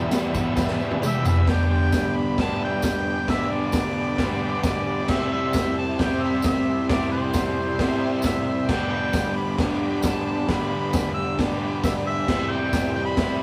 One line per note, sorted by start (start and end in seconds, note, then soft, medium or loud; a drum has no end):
0.00 0.12 E2 medium
0.00 0.13 B2 loud
0.00 0.11 E3 medium
0.00 0.12 G3 medium
0.00 0.13 B3 medium
0.00 0.15 E4 medium
0.00 0.10 B4 medium
0.00 0.11 E5 loud
0.11 0.35 E3 medium
0.11 0.35 G3 medium
0.11 0.34 B3 medium
0.11 0.32 G4 loud
0.11 0.33 B4 medium
0.11 0.33 E5 loud
0.11 snare loud
0.11 tambourine loud
0.11 crash medium
0.16 0.33 E4 medium
0.33 0.56 E3 medium
0.33 0.57 G3 medium
0.33 0.59 B3 loud
0.33 0.59 E4 loud
0.33 0.53 G4 medium
0.33 0.54 B4 medium
0.33 0.54 E5 loud
0.33 kick medium
0.33 tambourine medium
0.37 0.81 E2 medium
0.37 0.81 B2 medium
0.54 0.81 E3 medium
0.54 0.76 G4 loud
0.54 0.77 B4 loud
0.54 0.76 E5 loud
0.54 kick loud
0.54 snare medium
0.54 tambourine medium
0.59 0.81 G3 medium
0.59 0.80 B3 medium
0.59 0.80 E4 medium
0.67 snare medium
0.77 1.05 B3 medium
0.77 1.05 E4 medium
0.77 1.00 G4 medium
0.77 1.01 B4 medium
0.77 1.00 E5 loud
0.77 tambourine soft
0.82 1.27 E2 medium
0.82 1.27 B2 medium
0.82 1.02 E3 medium
0.82 1.03 G3 medium
0.91 high tom medium
1.02 1.26 E3 medium
1.02 1.26 G3 medium
1.02 1.24 B3 medium
1.02 1.24 G4 medium
1.02 1.25 B4 medium
1.02 1.25 D5 loud
1.02 1.24 G5 medium
1.02 mid tom medium
1.02 tambourine loud
1.06 1.23 E4 medium
1.06 1.26 E5 loud
1.25 1.47 E3 medium
1.25 1.47 G3 medium
1.25 1.46 B3 medium
1.25 1.46 E4 medium
1.25 1.48 G4 medium
1.25 1.48 B4 medium
1.25 1.51 E5 loud
1.25 1.48 B5 medium
1.25 floor tom loud
1.25 tambourine medium
1.29 1.48 E5 loud
1.36 floor tom loud
1.47 2.39 G2 loud
1.47 2.37 D3 loud
1.47 2.40 G3 loud
1.47 2.41 B3 loud
1.47 2.42 D4 loud
1.47 1.70 G5 loud
1.47 kick loud
1.47 snare loud
1.47 open hi-hat medium
1.51 2.42 G4 loud
1.51 1.71 G4 loud
1.51 1.71 B4 medium
1.51 1.71 D5 loud
1.70 1.93 G4 medium
1.70 1.93 B4 medium
1.70 2.17 G5 loud
1.75 1.94 D5 medium
1.92 2.15 G4 medium
1.92 2.16 B4 medium
1.92 kick loud
1.92 snare loud
1.92 open hi-hat medium
1.92 tambourine loud
1.97 2.16 D5 medium
2.16 2.36 G4 medium
2.16 2.36 B4 medium
2.16 2.37 D5 medium
2.16 2.38 B5 loud
2.37 3.27 G2 medium
2.37 3.27 D3 medium
2.37 3.29 G3 medium
2.37 2.58 G4 medium
2.37 2.58 B4 medium
2.37 2.59 D5 medium
2.37 2.60 A5 loud
2.37 kick loud
2.37 snare loud
2.37 open hi-hat medium
2.41 3.29 B3 medium
2.41 3.29 D4 medium
2.41 3.31 G4 medium
2.59 2.79 G4 loud
2.59 2.79 B4 medium
2.59 2.81 E5 loud
2.64 2.84 G5 loud
2.80 3.03 G4 loud
2.80 3.03 B4 medium
2.80 3.04 D5 loud
2.80 kick loud
2.80 snare loud
2.80 open hi-hat medium
2.80 tambourine loud
2.84 3.26 G5 loud
3.08 3.28 G4 medium
3.08 3.28 B4 medium
3.08 3.28 D5 medium
3.28 4.17 G2 medium
3.28 4.17 D3 medium
3.28 4.19 G3 loud
3.28 4.18 B3 loud
3.28 4.19 D4 loud
3.28 3.49 G4 medium
3.28 4.21 G4 loud
3.28 3.49 B4 medium
3.28 3.51 D5 loud
3.28 3.53 E5 loud
3.28 kick loud
3.28 snare loud
3.28 open hi-hat medium
3.50 3.70 G4 medium
3.50 3.70 B4 medium
3.50 4.64 D5 loud
3.50 3.72 D5 medium
3.71 3.94 G4 medium
3.71 3.94 B4 medium
3.71 3.95 D5 medium
3.71 kick loud
3.71 snare loud
3.71 open hi-hat medium
3.71 tambourine loud
3.98 4.19 G4 medium
3.98 4.19 B4 medium
3.98 4.19 D5 medium
4.18 5.07 G2 medium
4.18 5.08 D3 medium
4.18 5.09 G3 medium
4.18 5.08 B3 medium
4.18 5.08 D4 medium
4.18 5.12 G4 medium
4.18 4.41 G4 loud
4.18 4.42 B4 medium
4.18 kick loud
4.18 snare loud
4.18 open hi-hat medium
4.23 4.42 D5 loud
4.44 4.64 G4 loud
4.44 4.64 B4 loud
4.44 4.65 D5 loud
4.63 4.86 G4 loud
4.63 4.86 B4 medium
4.63 4.85 D5 medium
4.63 kick loud
4.63 snare loud
4.63 open hi-hat medium
4.63 tambourine loud
4.68 4.87 D5 loud
4.86 5.09 G4 medium
4.86 5.10 B4 medium
4.86 5.10 D5 loud
4.91 5.10 D5 medium
5.08 5.99 C3 medium
5.08 6.00 G3 medium
5.08 6.00 C4 loud
5.08 6.01 E4 loud
5.08 5.32 E5 loud
5.08 kick loud
5.08 snare loud
5.08 crash loud
5.12 6.02 G4 loud
5.12 5.32 G4 loud
5.12 5.32 C5 medium
5.12 5.33 E5 loud
5.33 5.55 G4 medium
5.33 5.55 C5 medium
5.33 5.74 E5 loud
5.38 5.56 E5 medium
5.53 kick loud
5.53 snare loud
5.53 open hi-hat medium
5.53 tambourine medium
5.58 5.77 G4 medium
5.58 5.77 C5 medium
5.58 5.78 G5 medium
5.78 5.99 G4 medium
5.78 6.00 C5 medium
5.78 6.00 E5 medium
5.78 5.98 A5 medium
5.99 6.88 C3 medium
5.99 6.90 G3 medium
5.99 6.89 C4 medium
5.99 6.89 E4 medium
5.99 6.22 G4 medium
5.99 6.91 G4 medium
5.99 6.21 C5 medium
5.99 6.24 G5 loud
5.99 kick loud
5.99 snare loud
5.99 open hi-hat medium
6.03 6.23 E5 medium
6.23 6.44 G4 loud
6.23 6.44 C5 medium
6.23 6.45 E5 medium
6.23 6.45 E5 loud
6.42 6.87 E5 loud
6.42 kick loud
6.42 snare loud
6.42 open hi-hat medium
6.42 tambourine loud
6.47 6.64 G4 loud
6.47 6.64 C5 medium
6.47 6.66 E5 loud
6.66 6.88 G4 medium
6.66 6.88 C5 medium
6.66 6.89 E5 medium
6.89 7.78 C3 loud
6.89 7.79 G3 loud
6.89 7.79 C4 medium
6.89 7.80 E4 loud
6.89 7.11 G4 loud
6.89 7.82 G4 loud
6.89 7.11 C5 medium
6.89 7.10 D5 loud
6.89 7.12 E5 loud
6.89 kick loud
6.89 snare loud
6.89 open hi-hat medium
7.12 7.35 G4 medium
7.12 8.07 C5 medium
7.16 7.35 C5 medium
7.16 7.36 F#5 medium
7.34 7.57 G4 medium
7.34 7.57 C5 medium
7.34 kick loud
7.34 snare loud
7.34 open hi-hat medium
7.34 tambourine loud
7.38 7.58 E5 medium
7.58 7.78 G4 medium
7.58 7.79 C5 medium
7.58 7.80 E5 medium
7.79 8.68 C3 medium
7.79 8.70 G3 medium
7.79 8.69 C4 medium
7.79 8.69 E4 medium
7.79 7.98 G4 medium
7.79 8.71 G4 medium
7.79 7.98 C5 medium
7.79 8.01 E5 loud
7.79 kick loud
7.79 snare loud
7.79 open hi-hat medium
7.99 8.22 G4 loud
7.99 8.22 C5 loud
7.99 8.23 E5 loud
8.22 8.46 G4 loud
8.22 8.46 C5 medium
8.22 8.45 E5 medium
8.22 8.47 E5 loud
8.22 kick loud
8.22 snare loud
8.22 open hi-hat medium
8.22 tambourine loud
8.46 8.67 G4 medium
8.46 8.68 C5 medium
8.46 8.69 E5 medium
8.68 9.58 G2 loud
8.68 9.58 D3 medium
8.68 9.60 G3 loud
8.68 9.60 B3 loud
8.68 9.61 D4 loud
8.68 8.90 G4 loud
8.68 9.62 G4 loud
8.68 8.90 B4 medium
8.68 8.91 D5 loud
8.68 8.89 G5 loud
8.68 kick loud
8.68 snare loud
8.68 crash loud
8.90 9.13 G4 medium
8.90 9.13 B4 medium
8.90 9.14 D5 medium
8.90 9.38 G5 medium
9.13 9.36 G4 medium
9.13 9.34 B4 medium
9.13 9.36 D5 medium
9.13 kick loud
9.13 snare loud
9.13 open hi-hat medium
9.13 tambourine loud
9.35 9.57 G4 medium
9.35 9.57 B4 medium
9.35 9.58 D5 medium
9.35 9.59 B5 medium
9.58 10.46 G2 medium
9.58 10.48 D3 medium
9.58 10.49 G3 medium
9.58 10.49 B3 medium
9.58 10.49 D4 medium
9.58 9.80 G4 medium
9.58 9.81 B4 medium
9.58 9.81 D5 medium
9.58 kick loud
9.58 snare loud
9.58 open hi-hat medium
9.62 10.51 G4 medium
9.83 10.02 G4 loud
9.83 10.03 B4 loud
9.83 10.03 D5 loud
10.02 10.23 G4 medium
10.02 10.23 B4 medium
10.02 10.24 D5 loud
10.02 10.26 A5 medium
10.02 kick loud
10.02 snare loud
10.02 open hi-hat medium
10.02 tambourine loud
10.24 10.45 G4 medium
10.24 10.47 B4 medium
10.24 10.47 D5 medium
10.24 10.50 A5 medium
10.46 11.37 G2 medium
10.46 11.37 D3 loud
10.46 11.39 G3 loud
10.46 11.38 B3 loud
10.46 10.69 G4 loud
10.46 10.70 B4 medium
10.46 10.70 D5 loud
10.46 10.68 B5 loud
10.46 kick loud
10.46 snare loud
10.46 open hi-hat medium
10.51 11.38 D4 medium
10.51 11.41 G4 loud
10.69 10.93 G4 medium
10.69 10.93 B4 medium
10.69 10.93 D5 medium
10.69 11.12 B5 loud
10.93 11.16 G4 medium
10.93 11.16 B4 medium
10.93 11.16 D5 medium
10.93 kick loud
10.93 snare loud
10.93 open hi-hat medium
10.93 tambourine loud
11.14 11.38 G4 medium
11.14 11.36 E6 medium
11.18 11.39 B4 medium
11.18 11.39 D5 medium
11.38 12.27 G2 medium
11.38 12.27 D3 medium
11.38 12.27 G3 medium
11.38 12.28 B3 medium
11.38 12.28 D4 medium
11.38 11.60 G4 medium
11.38 12.28 G4 medium
11.38 11.61 B4 medium
11.38 11.61 D5 medium
11.38 kick loud
11.38 snare loud
11.38 open hi-hat medium
11.61 11.81 G4 loud
11.61 11.83 B4 loud
11.61 11.83 D5 loud
11.82 12.04 G4 loud
11.82 12.05 B4 medium
11.82 12.06 D5 loud
11.82 11.94 E5 medium
11.82 kick loud
11.82 snare loud
11.82 open hi-hat medium
11.82 tambourine loud
12.07 12.27 G4 medium
12.07 12.28 B4 medium
12.07 12.28 D5 medium
12.07 12.52 E5 loud
12.28 13.16 C3 loud
12.28 13.17 E3 loud
12.28 13.17 G3 loud
12.28 13.17 E4 loud
12.28 12.49 G4 loud
12.28 13.18 G4 loud
12.28 12.50 C5 medium
12.28 12.50 E5 loud
12.28 kick loud
12.28 snare loud
12.28 crash loud
12.51 12.71 G4 medium
12.51 12.72 C5 medium
12.51 12.73 E5 medium
12.51 12.95 G5 loud
12.73 12.93 G4 medium
12.73 12.93 C5 medium
12.73 12.95 E5 medium
12.73 kick loud
12.73 snare loud
12.73 open hi-hat medium
12.73 tambourine medium
12.94 13.16 G4 medium
12.94 13.16 C5 medium
12.94 13.05 G5 medium
12.94 13.17 G5 medium
13.05 13.43 B5 loud
13.17 13.43 C3 medium
13.17 13.43 E3 medium
13.17 13.43 G3 medium
13.17 13.43 E4 medium
13.17 13.39 G4 medium
13.17 13.43 G4 medium
13.17 13.40 C5 medium
13.17 13.40 E5 medium
13.17 kick loud
13.17 snare loud
13.17 open hi-hat medium